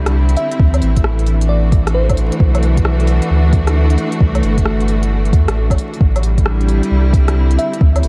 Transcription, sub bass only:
0, 0, Header, 1, 2, 480
1, 0, Start_track
1, 0, Tempo, 451128
1, 633, Time_signature, 4, 2, 24, 8
1, 8599, End_track
2, 0, Start_track
2, 0, Title_t, "Sub bass"
2, 0, Program_c, 0, 38
2, 0, Note_on_c, 0, 36, 96
2, 380, Note_off_c, 0, 36, 0
2, 631, Note_on_c, 0, 38, 101
2, 859, Note_off_c, 0, 38, 0
2, 880, Note_on_c, 0, 33, 106
2, 2453, Note_off_c, 0, 33, 0
2, 2553, Note_on_c, 0, 35, 101
2, 3409, Note_off_c, 0, 35, 0
2, 3518, Note_on_c, 0, 38, 99
2, 4225, Note_off_c, 0, 38, 0
2, 4473, Note_on_c, 0, 36, 105
2, 4700, Note_off_c, 0, 36, 0
2, 4715, Note_on_c, 0, 31, 107
2, 5670, Note_on_c, 0, 40, 102
2, 5686, Note_off_c, 0, 31, 0
2, 5815, Note_off_c, 0, 40, 0
2, 5831, Note_on_c, 0, 33, 82
2, 6143, Note_off_c, 0, 33, 0
2, 6394, Note_on_c, 0, 33, 102
2, 7250, Note_off_c, 0, 33, 0
2, 7354, Note_on_c, 0, 36, 97
2, 8063, Note_off_c, 0, 36, 0
2, 8310, Note_on_c, 0, 38, 103
2, 8538, Note_off_c, 0, 38, 0
2, 8553, Note_on_c, 0, 33, 103
2, 8599, Note_off_c, 0, 33, 0
2, 8599, End_track
0, 0, End_of_file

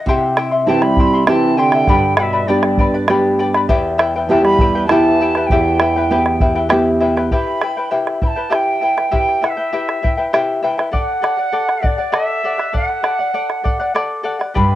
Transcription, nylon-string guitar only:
0, 0, Header, 1, 2, 480
1, 0, Start_track
1, 0, Key_signature, 1, "minor"
1, 0, Tempo, 604230
1, 45, Time_signature, 3, 2, 24, 8
1, 11719, End_track
2, 0, Start_track
2, 0, Title_t, "Nylon-string guitar"
2, 0, Program_c, 0, 24
2, 48, Note_on_c, 0, 48, 65
2, 530, Note_on_c, 0, 60, 51
2, 533, Note_on_c, 0, 64, 44
2, 539, Note_on_c, 0, 67, 52
2, 995, Note_off_c, 0, 60, 0
2, 997, Note_off_c, 0, 64, 0
2, 999, Note_off_c, 0, 67, 0
2, 1014, Note_on_c, 0, 60, 49
2, 1018, Note_on_c, 0, 64, 42
2, 1021, Note_on_c, 0, 67, 52
2, 1458, Note_off_c, 0, 48, 0
2, 1478, Note_off_c, 0, 60, 0
2, 1479, Note_off_c, 0, 64, 0
2, 1480, Note_off_c, 0, 67, 0
2, 1495, Note_on_c, 0, 43, 66
2, 1974, Note_on_c, 0, 59, 47
2, 1976, Note_on_c, 0, 62, 44
2, 1983, Note_on_c, 0, 67, 59
2, 2438, Note_off_c, 0, 59, 0
2, 2439, Note_off_c, 0, 62, 0
2, 2443, Note_off_c, 0, 67, 0
2, 2455, Note_on_c, 0, 59, 44
2, 2459, Note_on_c, 0, 62, 39
2, 2464, Note_on_c, 0, 67, 50
2, 2902, Note_off_c, 0, 43, 0
2, 2919, Note_off_c, 0, 59, 0
2, 2921, Note_off_c, 0, 62, 0
2, 2924, Note_off_c, 0, 67, 0
2, 2933, Note_on_c, 0, 40, 73
2, 3407, Note_on_c, 0, 59, 47
2, 3414, Note_on_c, 0, 64, 42
2, 3415, Note_on_c, 0, 67, 55
2, 3875, Note_off_c, 0, 59, 0
2, 3879, Note_off_c, 0, 64, 0
2, 3879, Note_off_c, 0, 67, 0
2, 3893, Note_on_c, 0, 59, 48
2, 3896, Note_on_c, 0, 64, 41
2, 3902, Note_on_c, 0, 67, 51
2, 4341, Note_off_c, 0, 40, 0
2, 4358, Note_off_c, 0, 59, 0
2, 4360, Note_off_c, 0, 64, 0
2, 4362, Note_off_c, 0, 67, 0
2, 4376, Note_on_c, 0, 40, 73
2, 4851, Note_on_c, 0, 59, 53
2, 4856, Note_on_c, 0, 64, 44
2, 4858, Note_on_c, 0, 67, 51
2, 5318, Note_off_c, 0, 59, 0
2, 5319, Note_off_c, 0, 64, 0
2, 5321, Note_off_c, 0, 67, 0
2, 5333, Note_on_c, 0, 59, 47
2, 5336, Note_on_c, 0, 64, 40
2, 5340, Note_on_c, 0, 67, 52
2, 5783, Note_off_c, 0, 40, 0
2, 5799, Note_off_c, 0, 59, 0
2, 5800, Note_off_c, 0, 64, 0
2, 5802, Note_off_c, 0, 67, 0
2, 11572, Note_on_c, 0, 43, 70
2, 11719, Note_off_c, 0, 43, 0
2, 11719, End_track
0, 0, End_of_file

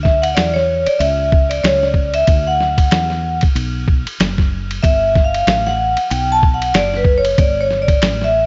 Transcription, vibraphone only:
0, 0, Header, 1, 2, 480
1, 0, Start_track
1, 0, Key_signature, 2, "major"
1, 0, Tempo, 638298
1, 1712, Time_signature, 4, 2, 24, 8
1, 6363, End_track
2, 0, Start_track
2, 0, Title_t, "Vibraphone"
2, 0, Program_c, 0, 11
2, 23, Note_on_c, 0, 76, 86
2, 166, Note_on_c, 0, 78, 94
2, 172, Note_off_c, 0, 76, 0
2, 262, Note_off_c, 0, 78, 0
2, 262, Note_on_c, 0, 74, 81
2, 397, Note_off_c, 0, 74, 0
2, 404, Note_on_c, 0, 73, 83
2, 648, Note_on_c, 0, 74, 86
2, 656, Note_off_c, 0, 73, 0
2, 746, Note_on_c, 0, 76, 86
2, 753, Note_off_c, 0, 74, 0
2, 1103, Note_off_c, 0, 76, 0
2, 1124, Note_on_c, 0, 74, 86
2, 1231, Note_on_c, 0, 73, 96
2, 1232, Note_off_c, 0, 74, 0
2, 1376, Note_off_c, 0, 73, 0
2, 1379, Note_on_c, 0, 74, 81
2, 1599, Note_off_c, 0, 74, 0
2, 1613, Note_on_c, 0, 76, 95
2, 1836, Note_off_c, 0, 76, 0
2, 1860, Note_on_c, 0, 78, 104
2, 2546, Note_off_c, 0, 78, 0
2, 3629, Note_on_c, 0, 76, 103
2, 3943, Note_on_c, 0, 77, 88
2, 3961, Note_off_c, 0, 76, 0
2, 4259, Note_on_c, 0, 78, 97
2, 4277, Note_off_c, 0, 77, 0
2, 4563, Note_off_c, 0, 78, 0
2, 4591, Note_on_c, 0, 79, 95
2, 4741, Note_off_c, 0, 79, 0
2, 4753, Note_on_c, 0, 81, 107
2, 4917, Note_off_c, 0, 81, 0
2, 4919, Note_on_c, 0, 78, 89
2, 5065, Note_off_c, 0, 78, 0
2, 5079, Note_on_c, 0, 74, 105
2, 5239, Note_on_c, 0, 71, 82
2, 5241, Note_off_c, 0, 74, 0
2, 5385, Note_off_c, 0, 71, 0
2, 5397, Note_on_c, 0, 73, 96
2, 5554, Note_on_c, 0, 74, 96
2, 5559, Note_off_c, 0, 73, 0
2, 5718, Note_off_c, 0, 74, 0
2, 5720, Note_on_c, 0, 73, 92
2, 5791, Note_off_c, 0, 73, 0
2, 5880, Note_on_c, 0, 74, 86
2, 6197, Note_on_c, 0, 76, 98
2, 6206, Note_off_c, 0, 74, 0
2, 6344, Note_off_c, 0, 76, 0
2, 6363, End_track
0, 0, End_of_file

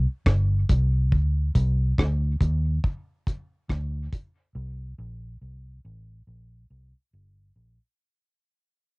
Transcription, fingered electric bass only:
0, 0, Header, 1, 2, 480
1, 0, Start_track
1, 0, Tempo, 858246
1, 625, Time_signature, 4, 2, 24, 8
1, 5025, End_track
2, 0, Start_track
2, 0, Title_t, "Fingered electric bass"
2, 0, Program_c, 0, 33
2, 148, Note_on_c, 0, 31, 81
2, 354, Note_off_c, 0, 31, 0
2, 391, Note_on_c, 0, 36, 80
2, 629, Note_off_c, 0, 36, 0
2, 629, Note_on_c, 0, 38, 106
2, 834, Note_off_c, 0, 38, 0
2, 869, Note_on_c, 0, 36, 91
2, 1074, Note_off_c, 0, 36, 0
2, 1111, Note_on_c, 0, 38, 85
2, 1316, Note_off_c, 0, 38, 0
2, 1348, Note_on_c, 0, 39, 92
2, 1554, Note_off_c, 0, 39, 0
2, 2070, Note_on_c, 0, 38, 88
2, 2275, Note_off_c, 0, 38, 0
2, 2546, Note_on_c, 0, 36, 93
2, 2752, Note_off_c, 0, 36, 0
2, 2787, Note_on_c, 0, 34, 89
2, 2993, Note_off_c, 0, 34, 0
2, 3028, Note_on_c, 0, 36, 72
2, 3234, Note_off_c, 0, 36, 0
2, 3270, Note_on_c, 0, 33, 89
2, 3475, Note_off_c, 0, 33, 0
2, 3508, Note_on_c, 0, 34, 80
2, 3714, Note_off_c, 0, 34, 0
2, 3749, Note_on_c, 0, 36, 86
2, 3868, Note_off_c, 0, 36, 0
2, 3990, Note_on_c, 0, 31, 82
2, 4195, Note_off_c, 0, 31, 0
2, 4227, Note_on_c, 0, 34, 69
2, 4346, Note_off_c, 0, 34, 0
2, 5025, End_track
0, 0, End_of_file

